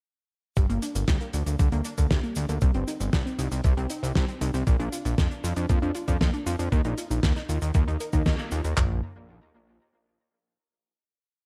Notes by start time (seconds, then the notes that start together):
0.56 G1 G3, kick, closed hi-hat, cabasa
0.70 G1 A#3, closed hi-hat
0.82 D4, closed hi-hat, cabasa
0.95 G1 A#3, closed hi-hat, cabasa
1.08 D2 G3, kick, snare, closed hi-hat, cabasa
1.21 A#3, closed hi-hat
1.33 D2 D4, closed hi-hat, cabasa
1.46 D2 A#3, closed hi-hat, cabasa
1.59 D2 G3, kick, closed hi-hat, cabasa
1.72 D2 A#3, closed hi-hat
1.85 D4, closed hi-hat, cabasa
1.98 D2 A#3, kick, closed hi-hat, cabasa
2.11 D2 G3, kick, snare, closed hi-hat, cabasa
2.23 A#3, closed hi-hat
2.36 D2 D4, closed hi-hat, cabasa
2.49 D2 A#3, closed hi-hat, cabasa
2.61 C2 G3, kick, closed hi-hat, cabasa
2.74 G1 C4, closed hi-hat
2.88 D#4, closed hi-hat, cabasa
3.00 G1 C4, closed hi-hat, cabasa
3.13 C2 G3, kick, snare, closed hi-hat, cabasa
3.26 C4, closed hi-hat
3.39 C2 D#4, closed hi-hat, cabasa
3.51 C2 C4, closed hi-hat, cabasa
3.64 C2 G3, kick, closed hi-hat, cabasa
3.77 C2 C4, closed hi-hat
3.90 D#4, closed hi-hat, cabasa
4.03 C2 C4, closed hi-hat, cabasa
4.15 C2 G3, kick, snare, closed hi-hat, cabasa
4.28 C4, closed hi-hat
4.41 C2 D#4, closed hi-hat, cabasa
4.54 C2 C4, closed hi-hat, cabasa
4.67 A#1 A#3, kick, closed hi-hat, cabasa
4.80 A#1 D4, closed hi-hat
4.92 F4, closed hi-hat, cabasa
5.05 A#1 D4, closed hi-hat, cabasa
5.18 F2 A#3, kick, snare, closed hi-hat, cabasa
5.31 D4, closed hi-hat
5.44 F2 F4, closed hi-hat, cabasa
5.56 F2 D4, closed hi-hat, cabasa
5.69 F2 A#3, kick, closed hi-hat, cabasa
5.82 F2 D4, closed hi-hat
5.95 F4, closed hi-hat, cabasa
6.08 F2 D4, kick, closed hi-hat, cabasa
6.21 F2 A#3, kick, snare, closed hi-hat, cabasa
6.34 D4, closed hi-hat
6.46 F2 F4, closed hi-hat, cabasa
6.59 F2 D4, closed hi-hat, cabasa
6.72 D#2 A#3, kick, closed hi-hat, cabasa
6.85 A#1 D#4, closed hi-hat
6.98 F4, closed hi-hat, cabasa
7.11 A#1 D#4, closed hi-hat, cabasa
7.23 D#2 A#3, kick, snare, closed hi-hat, cabasa
7.36 D#4, snare, closed hi-hat
7.49 D#2 F4, closed hi-hat, cabasa
7.62 D#2 D#4, closed hi-hat, cabasa
7.74 D#2 A#3, kick, closed hi-hat, cabasa
7.88 D#2 D#4, closed hi-hat
8.00 A#4, closed hi-hat, cabasa
8.13 D#2 D#4, kick, closed hi-hat, cabasa
8.26 D#2 D#5, kick, snare, closed hi-hat, cabasa
8.39 A#3, closed hi-hat
8.51 D#2 F4, closed hi-hat, cabasa
8.64 D#2 A#5, closed hi-hat, cabasa
8.77 A#1 A#3, kick, clap, floor tom